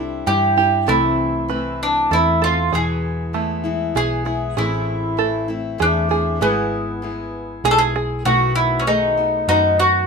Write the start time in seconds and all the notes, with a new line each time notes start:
Already playing: C2 C4 D4 E4 A4
0.00 G3
0.26 G2 E3 G3 D4 E4 G4
0.57 G3 D4 E4 G4
0.86 C2 C3 E3 A3 C4 E4 A4
1.48 E3 A3 C4 E4 B4
1.83 D4
2.11 E2 E3 A3 C4 E4 A4
2.42 A3 C4 F4 A4
2.72 E2 B2 E3 G#3 B3 E4 G#4
3.33 E3 G#3 A3 B3 E4
3.64 E3 G#3 B3 E4
3.95 B1 E3 G#3 B3 E4 G#4
4.25 E3 G#3 B3 E4 G#4
4.57 A1 A2 E3 A3 C4 E4 G#4
5.17 E3 A3 C4 E4 A4
5.48 A3 C4 E4
5.78 E2 E3 A3 C4 D4 E4 G#4
6.09 A3 C4 E4 G#4
6.41 G#1 G#3 B3 E4 G#4
7.02 G#3 B3 E4 G#4
7.64 B1 G#3 B3 E4 G#4
7.71 A4
7.78 G#4
7.96 G#4
8.25 B1 B2 D#3 A3 B3 F#4
8.55 E4
8.79 C#4
8.86 D#3 A3 B3 D#4 F#4 G#4
9.17 A3 B3 F#4
9.48 F#2 D#3 A3 B3 D#4 F#4
9.80 F#4